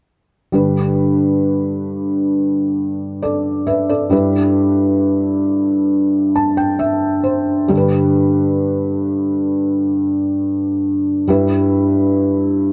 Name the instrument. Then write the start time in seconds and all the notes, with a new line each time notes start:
felt piano
0.52 G2 D3 G3 D4 B4
3.22 A4 D5
3.67 B4 E5
3.89 A4 D5
4.10 G2 G3 E4 B4
6.36 A5
6.57 G5
6.79 E5
7.24 C5
7.68 G2 D3 G3 D4 A4
7.77 B4
11.28 G2 G3 E4 B4